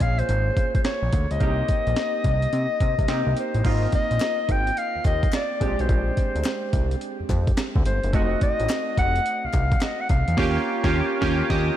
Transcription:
Already playing: A#3 C#4 F4 G#4
0.00 A#1 F5, kick, closed hi-hat
0.19 C5, closed hi-hat
0.29 G#1, closed hi-hat
0.57 kick, closed hi-hat
0.75 C5, kick, closed hi-hat
0.84 C#5, snare, closed hi-hat
1.02 A#1
1.13 D2, kick, closed hi-hat
1.31 C#2 D#5, closed hi-hat
1.40 C2 A#3 C4 D#4 G4, kick, closed hi-hat
1.68 kick, closed hi-hat
1.87 A#1, closed hi-hat
1.96 snare, closed hi-hat
2.24 C2, kick, closed hi-hat
2.42 closed hi-hat
2.53 C3, closed hi-hat
2.80 C3, kick, closed hi-hat
2.99 C2, kick, closed hi-hat
3.08 C3 A#3 C4 D#4 G4, snare, closed hi-hat
3.27 C2
3.37 C5, closed hi-hat
3.54 A1, closed hi-hat
3.64 G#1 A#3 C4 D#4 F4 D#5, kick, closed hi-hat, crash
3.92 D#5, kick, closed hi-hat
4.11 A#1, closed hi-hat
4.20 snare, clap, closed hi-hat
4.49 G#1 G5, kick, closed hi-hat
4.67 closed hi-hat
4.77 F5, closed hi-hat
4.95 D#2
5.05 D#2 D#5, kick, clap, closed hi-hat
5.23 kick, closed hi-hat
5.32 D5, snare, clap, closed hi-hat
5.60 A#1 G#3 C4 D4 G4, kick, closed hi-hat
5.79 B1 C5, closed hi-hat
5.89 A#1, kick, closed hi-hat
6.17 kick, closed hi-hat
6.35 D2, closed hi-hat
6.44 snare, clap, closed hi-hat
6.73 C2, kick, closed hi-hat
6.91 closed hi-hat
7.01 closed hi-hat
7.20 F2
7.29 F2, kick, clap, closed hi-hat
7.47 kick, closed hi-hat
7.57 snare, clap, closed hi-hat
7.75 D2, kick
7.86 G1 C5, closed hi-hat
8.03 F#1, closed hi-hat
8.13 F1 A3 C4 D#4 F#4 D#5, kick, closed hi-hat
8.41 D#5, kick, closed hi-hat
8.60 A1, closed hi-hat
8.69 snare, clap, closed hi-hat
8.98 F1 F#5, kick, closed hi-hat
9.16 closed hi-hat
9.26 closed hi-hat
9.44 C2 F5
9.53 C2, kick, clap, closed hi-hat
9.72 kick, closed hi-hat
9.81 D#5, snare, clap, closed hi-hat
10.01 F#5
10.09 C2 F5, kick, closed hi-hat
10.28 E2, closed hi-hat
10.37 D#2 A#3 C#4 F4 G4, kick, snare, crash
10.83 D#2 A#3 C#4 F4 G4, kick, snare
11.21 D#2 A#3 C#4 F4 G4, kick, snare
11.50 D#2 G4 D#5, kick, snare

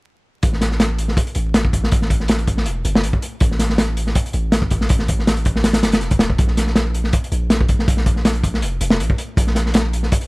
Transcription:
0.43 A1, kick, closed hi-hat
0.53 snare
0.61 snare, closed hi-hat
0.71 snare
0.80 snare, closed hi-hat
0.99 closed hi-hat
1.08 snare
1.17 kick, closed hi-hat
1.27 closed hi-hat
1.35 A1, closed hi-hat
1.54 snare, closed hi-hat
1.65 kick
1.73 kick, closed hi-hat
1.84 snare
1.92 A1, kick, closed hi-hat
2.02 snare
2.10 kick, closed hi-hat
2.20 snare
2.28 snare, closed hi-hat
2.39 closed hi-hat
2.47 kick, closed hi-hat
2.57 snare
2.66 E1, closed hi-hat
2.85 G1, closed hi-hat
2.95 snare
3.03 A1, closed hi-hat
3.13 kick
3.22 closed hi-hat
3.40 A1, kick, closed hi-hat
3.51 snare
3.59 snare, closed hi-hat
3.70 snare
3.78 snare, closed hi-hat
3.97 closed hi-hat
4.07 snare
4.15 kick, closed hi-hat
4.26 closed hi-hat
4.33 A1, closed hi-hat
4.52 snare, closed hi-hat
4.62 kick
4.71 kick, closed hi-hat
4.81 snare
4.89 A1, kick, closed hi-hat
4.99 snare
5.08 kick, closed hi-hat
5.19 snare
5.27 snare, closed hi-hat
5.37 closed hi-hat
5.45 kick, closed hi-hat
5.56 snare
5.64 snare, closed hi-hat
5.73 snare, closed hi-hat
5.83 G1, snare, closed hi-hat
5.92 snare, closed hi-hat
6.01 E1, snare, closed hi-hat
6.11 kick, closed hi-hat
6.19 snare, closed hi-hat
6.30 kick
6.38 A#1, kick, closed hi-hat
6.48 snare
6.57 snare, closed hi-hat
6.67 snare
6.75 snare, closed hi-hat
6.94 closed hi-hat
7.04 snare
7.13 kick, closed hi-hat
7.24 closed hi-hat
7.32 A#1, closed hi-hat
7.50 snare, closed hi-hat
7.61 kick
7.69 kick, closed hi-hat
7.79 snare
7.88 A#1, kick, closed hi-hat
7.97 snare
8.06 kick, closed hi-hat
8.16 snare
8.25 snare, closed hi-hat
8.35 closed hi-hat
8.43 kick, closed hi-hat
8.54 snare
8.62 F1, closed hi-hat
8.81 F1, closed hi-hat
8.90 snare
9.00 A#1, closed hi-hat
9.10 kick
9.18 closed hi-hat
9.37 A#1, kick, closed hi-hat
9.47 snare
9.55 snare, closed hi-hat
9.66 snare
9.74 snare, closed hi-hat
9.93 closed hi-hat
10.03 snare
10.12 kick, closed hi-hat
10.21 closed hi-hat

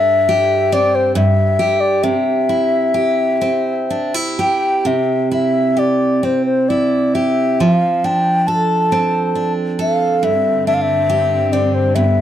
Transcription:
Already playing: G2 D4 E5
0.29 G4
0.72 C4 D5
0.95 C5
1.15 G2 E5
1.59 G4
1.80 D5
2.03 C3 E5
2.49 E4
2.94 G4
3.41 C4
3.90 D4
4.14 E4
4.39 G4 G5
4.85 C3 E5
5.31 E4 E5
5.77 G4 D5
6.23 C4 C5
6.46 C5
6.69 E4 D5
7.14 G4 E5
7.60 F3 F5
8.04 D4 G5
8.47 A4 A5
8.92 C4
9.35 D4
9.79 A4 F5
10.23 G2 D3 C4 E5
10.67 D4 E5
10.74 F5
10.82 E5
11.10 G4
11.52 C4 D5
11.74 C5
11.95 G2 B3 E5

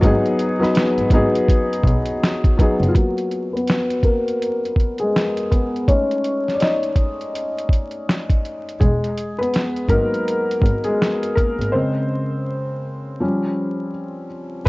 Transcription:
Already playing: B3 D#4 G#4
0.00 G#1 F#3 B3 D#4, kick, closed hi-hat
0.05 G#4
0.26 closed hi-hat
0.39 closed hi-hat
0.59 F#3 B3 D#4 B4, snare
0.64 closed hi-hat
0.75 snare, closed hi-hat
0.98 G#1, closed hi-hat
1.10 G#1 F#3 B3 D#4, kick, closed hi-hat
1.15 G#4
1.35 closed hi-hat
1.48 kick, closed hi-hat
1.73 closed hi-hat
1.83 B1, kick, closed hi-hat
2.05 closed hi-hat
2.23 snare, closed hi-hat
2.44 kick, closed hi-hat
2.57 F#3 B3 D#4, kick, closed hi-hat
2.62 G#4
2.81 F#1, closed hi-hat
2.88 F4
2.95 F#3 A#3 B3 F#4, kick, closed hi-hat
3.18 closed hi-hat
3.31 closed hi-hat
3.53 B3 B4, closed hi-hat
3.67 snare, closed hi-hat
3.90 closed hi-hat
4.03 A#3 A#4, kick, closed hi-hat
4.28 closed hi-hat
4.42 closed hi-hat
4.65 closed hi-hat
4.76 kick, closed hi-hat
4.98 G#3 G#4, closed hi-hat
5.16 snare, closed hi-hat
5.37 closed hi-hat
5.51 B3 B4, kick, closed hi-hat
5.76 closed hi-hat
5.88 G#3 A3 C#4 D#4 C#5, kick, closed hi-hat
6.11 closed hi-hat
6.24 closed hi-hat
6.48 snare, closed hi-hat
6.54 D5
6.60 D#4 D#5, snare, closed hi-hat
6.83 closed hi-hat
6.96 kick, closed hi-hat
7.21 closed hi-hat
7.35 closed hi-hat
7.58 closed hi-hat
7.69 kick, closed hi-hat
7.91 closed hi-hat
8.09 snare, closed hi-hat
8.30 kick, closed hi-hat
8.45 closed hi-hat
8.69 closed hi-hat
8.80 E1 G#3 G#4, kick, closed hi-hat
9.04 closed hi-hat
9.17 closed hi-hat
9.38 B3 B4
9.43 closed hi-hat
9.54 snare, closed hi-hat
9.76 closed hi-hat
9.89 G#1 F#3 G#3 A#3 D#4 A#4, kick, closed hi-hat
10.14 closed hi-hat
10.28 closed hi-hat
10.51 closed hi-hat
10.62 G#1, kick, closed hi-hat
10.84 G#3 G#4, closed hi-hat
11.02 snare, closed hi-hat
11.23 closed hi-hat
11.35 A#3 A#4, kick, closed hi-hat
11.60 G#1, closed hi-hat
11.72 C#3 G#3 C4 C5
13.20 F3 G3 C#4
14.65 B4

